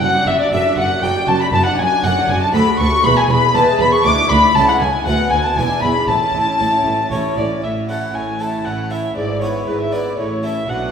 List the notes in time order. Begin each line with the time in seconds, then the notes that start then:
0.02 F#1 F#2 F#4 F#5
0.15 D4
0.27 F#1 F#2 F#4 E5
0.39 D4 D5
0.52 F#1 F#2 A3 F#4 A4 D5 E5
0.65 D4
0.77 F#1 F#2 F#4 F#5
0.90 D4
1.02 F#1 F#2 A3 F#4 A4 D5 G5
1.15 D4
1.28 F#1 F#2 F#4 A5
1.40 D4 B5
1.52 F#1 F#2 F#4 A5
1.66 D4 F#5
1.78 F#1 F#2 F#4 G#5
1.92 D4
2.03 F#1 F#2 A3 F#4 D5 F#5
2.17 D4
2.28 F#1 F#2 F#4 G#5
2.41 D4 A5
2.54 D2 A3 F#4 A4 D5 B5
2.68 F#4
2.79 D2 A4 C#6
2.92 F#4
3.04 E1 E2 B4 B5
3.17 G#4 G#5
3.29 E1 E2 B4 B5
3.43 G#4
3.54 E1 E2 G#3 E4 B4 A5
3.68 G#4
3.79 E1 E2 B4 B5
3.92 G#4 C#6
4.04 D2 G#3 D4 E4 B4 D6
4.18 E4
4.30 D2 D4 B5
4.43 E4
4.55 C#2 A3 C#4 E4 A4 A5
4.68 E4 F#5
4.80 C#2 C#4 G#5
4.93 E4
5.05 D2 A3 F#4 B4 F#5
5.18 B3
5.31 D2 A3 G#5
5.43 B3 A5
5.56 E1 E2 D4 E4 B4 G#5
5.69 D4
5.82 E1 E2 E4 B5
5.95 D4
6.07 A1 A2 E4 A5
6.20 C#4
6.33 A1 A2 E4
6.47 C#4
6.59 A1 A2 C#4 E4 A4
6.72 C#4
6.85 A1 A2 E4
6.98 C#4
7.10 A1 A2 C#4 E4 A4 C#5
7.24 C#4
7.36 A1 A2 E4 D5
7.49 C#4
7.62 A1 A2 E4 C#5 E5
7.88 C#4 E4 A4 C#5 F#5
8.13 A1 A2 E4 C#5 G#5
8.39 C#4 E4 A4 C#5 A5
8.64 A1 A2 E4 C#5 F#5
8.90 C#4 E4 A4 C#5 E5
9.15 G#1 G#2 E4 B4 D5
9.41 B3 E4 B4 C#5
9.66 G#1 G#2 E4 B4
9.80 E5
9.92 B3 E4 B4 D5
10.17 A1 A2 E4 A4 C#5
10.43 C#4 E4 A4 E5
10.68 B1 B2 D4 F#4 F#5